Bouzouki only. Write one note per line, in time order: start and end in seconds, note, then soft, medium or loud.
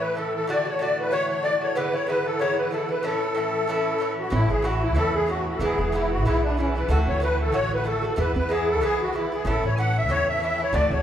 0.00 0.14 A2 medium
0.00 0.15 E3 medium
0.00 0.16 C#4 medium
0.00 0.16 E4 medium
0.15 0.46 A2 soft
0.15 0.48 E3 soft
0.15 0.48 C#4 medium
0.15 0.49 E4 medium
0.47 0.65 A2 medium
0.47 0.66 D3 medium
0.47 0.66 A3 medium
0.47 0.64 F#4 medium
0.65 0.79 D3 soft
0.65 0.80 A3 soft
0.65 0.79 F#4 soft
0.79 1.10 A2 medium
0.79 1.10 D3 medium
0.79 1.11 A3 medium
0.79 1.12 F#4 medium
1.11 1.42 A2 soft
1.11 1.43 D3 medium
1.11 1.44 A3 medium
1.11 1.44 F#4 medium
1.43 1.61 A2 soft
1.43 1.62 D3 medium
1.43 1.62 A3 medium
1.43 1.60 F#4 soft
1.61 1.75 D3 soft
1.61 1.76 A3 soft
1.61 1.75 F#4 soft
1.75 1.94 G#2 medium
1.75 1.94 D3 medium
1.75 1.94 B3 medium
1.75 1.92 E4 medium
1.93 2.07 D3 soft
1.93 2.08 B3 soft
1.93 2.07 E4 soft
2.07 2.38 G#2 medium
2.07 2.40 D3 medium
2.07 2.40 B3 medium
2.07 2.41 E4 medium
2.39 2.70 G#2 medium
2.39 2.71 D3 medium
2.39 2.71 B3 medium
2.39 2.73 E4 medium
2.71 2.89 G#2 soft
2.71 2.90 D3 medium
2.71 2.90 B3 soft
2.71 2.88 E4 medium
2.89 3.03 D3 soft
2.89 3.04 B3 soft
2.89 3.03 E4 soft
3.03 3.21 A2 medium
3.03 3.22 E3 medium
3.03 3.22 C#4 medium
3.03 3.20 E4 medium
3.21 3.34 E3 soft
3.21 3.36 C#4 soft
3.21 3.35 E4 soft
3.35 3.66 A2 medium
3.35 3.68 E3 soft
3.35 3.68 C#4 medium
3.35 3.69 E4 medium
3.67 3.97 A2 medium
3.67 4.00 E3 medium
3.67 4.00 C#4 medium
3.67 4.02 E4 medium
3.98 4.29 A2 medium
3.98 4.31 E3 medium
3.98 4.31 C#4 medium
3.98 4.32 E4 medium
4.30 4.49 A2 medium
4.30 4.50 E3 medium
4.30 4.49 C#4 medium
4.30 4.48 E4 medium
4.49 4.63 E3 soft
4.49 4.63 C#4 soft
4.49 4.63 E4 soft
4.62 4.93 A2 medium
4.62 4.94 E3 medium
4.62 4.95 C#4 medium
4.62 4.95 E4 medium
4.94 5.25 A2 medium
4.94 5.26 E3 medium
4.94 5.28 C#4 medium
4.94 5.28 E4 medium
5.27 5.59 A2 soft
5.27 5.59 E3 medium
5.27 5.60 C#4 medium
5.27 5.61 E4 medium
5.60 5.78 G#2 medium
5.60 5.79 E3 medium
5.60 5.78 B3 medium
5.60 5.77 E4 medium
5.78 5.92 E3 soft
5.78 5.93 B3 soft
5.78 5.92 E4 soft
5.92 6.24 G#2 medium
5.92 6.25 E3 medium
5.92 6.25 B3 medium
5.92 6.26 E4 medium
6.25 6.56 G#2 medium
6.25 6.57 E3 medium
6.25 6.57 B3 medium
6.25 6.58 E4 medium
6.57 6.75 G#2 soft
6.57 6.75 E3 soft
6.57 6.76 B3 soft
6.57 6.74 E4 medium
6.75 6.89 E3 soft
6.75 6.89 B3 soft
6.75 6.89 E4 soft
6.89 7.19 A2 medium
6.89 7.20 D3 medium
6.89 7.21 A3 medium
6.89 7.22 F#4 medium
7.20 7.51 A2 medium
7.20 7.52 D3 medium
7.20 7.53 A3 medium
7.20 7.53 F#4 medium
7.52 7.83 A2 medium
7.52 7.83 D3 medium
7.52 7.85 A3 medium
7.52 7.85 F#4 medium
7.84 8.02 A2 soft
7.84 8.03 D3 medium
7.84 8.03 A3 medium
7.84 8.01 F#4 medium
8.02 8.16 D3 soft
8.02 8.17 A3 soft
8.02 8.16 F#4 soft
8.16 8.35 G#2 medium
8.16 8.35 E3 medium
8.16 8.35 B3 medium
8.16 8.33 E4 medium
8.35 8.49 E3 soft
8.35 8.49 B3 soft
8.35 8.49 E4 soft
8.49 8.80 G#2 medium
8.49 8.81 E3 medium
8.49 8.82 B3 medium
8.49 8.82 E4 medium
8.81 9.12 G#2 medium
8.81 9.12 E3 medium
8.81 9.14 B3 medium
8.81 9.14 E4 medium
9.13 9.31 G#2 soft
9.13 9.32 E3 soft
9.13 9.32 B3 medium
9.13 9.31 E4 soft
9.32 9.45 E3 soft
9.32 9.46 B3 soft
9.32 9.45 E4 soft
9.45 9.63 A2 medium
9.45 9.64 E3 medium
9.45 9.64 C#4 medium
9.45 9.63 E4 medium
9.64 9.77 E3 soft
9.64 9.78 C#4 soft
9.64 9.77 E4 soft
9.78 10.08 A2 medium
9.78 10.09 E3 medium
9.78 10.09 C#4 medium
9.78 10.10 E4 medium
10.09 10.39 A2 medium
10.09 10.40 E3 medium
10.09 10.42 C#4 medium
10.09 10.42 E4 medium
10.40 10.59 A2 medium
10.40 10.60 E3 medium
10.40 10.60 C#4 medium
10.40 10.58 E4 medium
10.59 10.73 E3 soft
10.59 10.74 C#4 soft
10.59 10.73 E4 soft
10.73 10.91 A2 medium
10.73 10.92 D3 medium
10.73 10.92 A3 medium
10.73 10.90 F#4 medium
10.91 11.02 D3 soft
10.91 11.02 A3 soft
10.91 11.02 F#4 soft